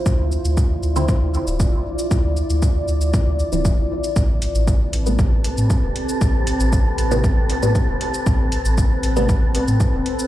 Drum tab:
HH |----------------|----------------|--x---x---x---x-|--x---x---x---x-|
SH |x-xxx-xxx-xxx--x|x-xxx-xxx-xxx--x|x-xxx-xxx-xxx--x|x-xxx-xxx-xxx--x|
BD |o---o---o---o---|o---o---o---o---|o---o---o---o---|o---o---o---o---|

HH |--x---x---x---x-|
SH |x-xxx-xxx-xxx--x|
BD |o---o---o---o---|